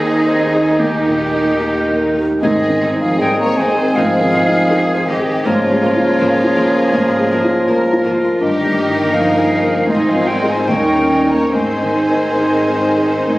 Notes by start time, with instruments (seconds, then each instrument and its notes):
Already playing: grand piano D#2 D#3 D#4, double bass section D#2, timpani D#3, viola section D#3 C4, french horn section D#3, bassoon D#3, violin section D#4 G#4, clarinet D#4, cello section D#4, oboe G#4, flute D#5
0.00 grand piano G#4
0.27 grand piano C5
0.54 grand piano G#4
0.79 grand piano D#2, viola section D#3 A#3, violin section D#4 G4, oboe G4
1.09 grand piano A#2
1.21 clarinet G4
1.34 grand piano D#4
1.61 clarinet D#4, grand piano G4
1.88 grand piano A#4
2.15 grand piano G4
2.42 double bass section G#1, grand piano G#2, french horn section D#3, bassoon D#3, viola section D#3 C4, clarinet C4, cello section C4, violin section D#4 G#4, oboe G#4, flute D#5
2.69 grand piano D#3
2.80 double bass section G#1, viola section D#3 C4, violin section D#4 G#4
2.95 grand piano D#4
3.01 french horn section F3, violin section G#4, flute F5
3.19 double bass section G#1, viola section D#3 C4, french horn section G3, cello section C4, violin section D#4 G#4 A#4, grand piano G#4, flute G5
3.38 french horn section A#3, violin section C#5, flute A#5
3.46 grand piano C5
3.57 double bass section G#1, viola section D#3 C4, french horn section G#3, violin section D#4 G#4, flute G#5
3.62 violin section C5
3.72 grand piano G#4
3.94 double bass section G#1, grand piano G#2, viola section D#3 C4, french horn section F3, violin section D#4 G#4, flute F5
4.21 grand piano D#3
4.33 double bass section G#1, viola section D#3 C4, violin section D#4 G#4
4.47 grand piano D#4
4.69 double bass section G#1, viola section D#3 C4, violin section D#4 G#4, cello section G#4, grand piano G#4
4.95 grand piano C5
5.06 double bass section G#1, french horn section D#3, viola section D#3 C4, violin section D#4 G4 G#4, cello section G4, flute D#5
5.20 grand piano G#4
5.44 double bass section G#1, grand piano G#2, french horn section C#3, viola section F3 A#3, bassoon F3, clarinet A#3, violin section A#3 F4 A#4, cello section F4, oboe A#4, flute C#5
5.73 grand piano G#3
5.82 double bass section G#1, viola section F3 A#3, violin section A#3 A#4
5.96 grand piano F4
6.18 double bass section G#1, viola section F3 A#3, violin section A#3 A#4, cello section G#4, grand piano A#4
6.44 grand piano F4
6.56 double bass section G#1, viola section F3 A#3, violin section A#3 A#4
6.69 grand piano A#4
6.92 double bass section G#1, grand piano G#2, viola section F3 A#3, violin section A#3 A#4
7.19 grand piano G#3
7.32 double bass section G#1, viola section F3 A#3, violin section A#3 A#4
7.44 grand piano F4
7.68 double bass section G#1, viola section F3 A#3, violin section A#3 A#4, grand piano A#4, cello section A#4
7.92 grand piano F4
8.03 double bass section G#1, viola section F3 A#3, violin section A#3 A#4, cello section F4
8.17 grand piano A#4
8.40 double bass section G1, grand piano G2, bassoon D#3, french horn section D#3, viola section D#3 A#3, clarinet D#4, violin section D#4 G4 A#4, cello section G4, oboe A#4, flute D#5
8.64 grand piano G3
8.89 grand piano D#4
9.13 french horn section F3, cello section D#4, violin section G#4, grand piano A#4, flute F5
9.38 grand piano D#4
9.63 grand piano A#4
9.87 double bass section G#1, grand piano G#2, timpani G#2, french horn section D#3, bassoon D#3, viola section D#3 C4, clarinet D#4, violin section D#4 G#4, cello section F4, oboe C5, flute D#5
10.08 french horn section F3, violin section G#4, flute F5
10.14 grand piano C4
10.27 french horn section G3, violin section A#4, flute G5
10.42 grand piano D#4 G#4
10.49 french horn section G#3, violin section C5, flute G#5
10.68 grand piano D#2, double bass section D#2, bassoon D#3, viola section D#3 C#4, french horn section G3, cello section D#4, violin section D#4 A#4, clarinet D#4, oboe C#5, flute G5
10.95 grand piano C#4
11.24 grand piano D#4 A#4
11.32 french horn section A#3, violin section C#5, flute A#5
11.52 double bass section G#1, grand piano G#2, bassoon D#3, viola section D#3 C4, french horn section G#3, cello section C4, violin section D#4 G#4 C5, clarinet D#4, oboe C5, flute G#5
11.83 grand piano D#3
12.11 grand piano D#4
12.39 grand piano G#4
12.69 grand piano C5
12.97 grand piano G#4
13.27 grand piano G#2